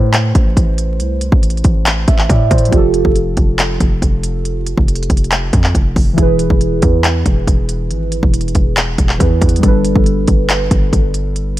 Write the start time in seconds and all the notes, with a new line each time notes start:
Already playing: A2 A3 E4 B4 C5
0.14 clap, closed hi-hat
0.35 A1, kick, closed hi-hat
0.57 A1, kick, closed hi-hat
0.78 closed hi-hat
1.00 C2, closed hi-hat
1.21 closed hi-hat
1.32 A1, kick
1.43 closed hi-hat
1.50 closed hi-hat
1.57 closed hi-hat
1.64 A1, kick, closed hi-hat
1.86 clap, closed hi-hat
2.08 A1 E5, kick, closed hi-hat
2.18 clap
2.29 A2 D5, kick, closed hi-hat
2.51 A2 C5, kick, closed hi-hat
2.58 closed hi-hat
2.65 F3, closed hi-hat
2.71 F1 F4 G4, kick, closed hi-hat
2.77 A4
2.94 closed hi-hat
3.05 F1, kick
3.16 closed hi-hat
3.37 F1, kick, closed hi-hat
3.59 clap, closed hi-hat
3.80 F1, kick, closed hi-hat
4.02 F1, kick, closed hi-hat
4.23 closed hi-hat
4.45 closed hi-hat
4.67 closed hi-hat
4.78 F1, kick
4.88 closed hi-hat
4.96 closed hi-hat
5.03 closed hi-hat
5.10 F1, kick, closed hi-hat
5.17 closed hi-hat
5.24 closed hi-hat
5.32 clap, closed hi-hat
5.53 F2, kick, closed hi-hat
5.64 clap
5.75 F1, kick, closed hi-hat
5.96 F1, kick, open hi-hat
6.13 E3 E4
6.18 E1 G#4, kick, closed hi-hat
6.22 B4
6.39 closed hi-hat
6.50 E1, kick
6.61 closed hi-hat
6.82 E2, kick, closed hi-hat
7.04 clap, closed hi-hat
7.26 E1, kick, closed hi-hat
7.47 E1, kick, closed hi-hat
7.69 closed hi-hat
7.91 G#1, closed hi-hat
8.12 closed hi-hat
8.23 E1, kick
8.34 closed hi-hat
8.41 closed hi-hat
8.48 closed hi-hat
8.55 E1, kick, closed hi-hat
8.77 clap, closed hi-hat
8.98 E1, kick, closed hi-hat
9.09 clap
9.18 E2 E3 E4 G#4, kick, closed hi-hat
9.22 B4
9.41 E2, kick, closed hi-hat
9.49 closed hi-hat
9.56 G3, closed hi-hat
9.62 G1 D4 A4, kick, closed hi-hat
9.68 B4
9.85 closed hi-hat
9.96 G1, kick
10.06 closed hi-hat
10.28 G1, kick, closed hi-hat
10.50 clap, closed hi-hat
10.71 G1, kick, closed hi-hat
10.93 G1, kick, closed hi-hat
11.14 closed hi-hat
11.36 closed hi-hat